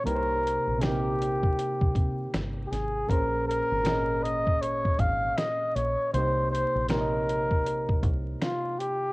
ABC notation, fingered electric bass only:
X:1
M:4/4
L:1/16
Q:"Swing 16ths" 1/4=79
K:Cphr
V:1 name="Fingered electric bass" clef=bass
C,,3 B,,,4- B,,, z C,, C,2 G,,,2 A,,,2 | B,,,3 A,,,6- A,,, A,,,2 z2 B,,, z | C,,3 B,,,6- B,,, C,,2 z4 |]